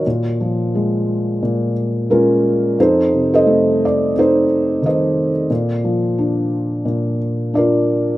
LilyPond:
<<
  \new Staff \with { instrumentName = "Felt piano" } { \time 4/4 \key bes \phrygian \tempo 4 = 88 << { r2. bes'4 | c''8. ees''8. d''8 c''4 ees''8. r16 | r2. d''4 | } \\ { r2. <des' f'>4 | <ees' a'>8. <a' c''>4~ <a' c''>16 <ees' a'>4 <a' c''>4 | r2. <f' bes'>4 | } >> }
  \new Staff \with { instrumentName = "Felt piano" } { \clef bass \time 4/4 \key bes \phrygian bes,8 f8 aes4 bes,4 aes4 | f,8 c8 a4 c'4 ees4 | bes,8 f8 d'4 bes,4 d'4 | }
>>